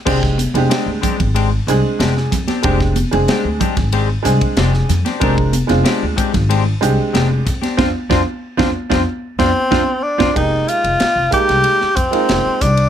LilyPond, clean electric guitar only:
\new Staff \with { instrumentName = "Clean electric guitar" } { \time 4/4 \key f \dorian \tempo 4 = 93 <aes c' d' g'>16 r8. <aes c' d' g'>16 r16 <aes c' d' g'>16 r16 <aes c' d' g'>16 r8. <aes c' d' g'>16 r8 <c' d' g'>16 | <aes c' d' g'>16 r8. <aes c' d' g'>16 r16 <aes c' d' g'>16 r16 <aes c' d' g'>16 r8. <aes c' d' g'>16 r8 <c' d' g'>16 | <aes c' d' g'>16 r8. <aes c' d' g'>16 r16 <aes c' d' g'>16 r16 <aes c' d' g'>16 r8. <aes c' d' g'>16 r8 <c' d' g'>16 | <c' d' f'>16 r16 <c' d' f'>16 r8 <c' d' f'>16 r16 <c' d' f'>16 r8 <c' d' f'>16 r16 <c' d' f'>16 r8 <c' d' f'>16 |
r1 | }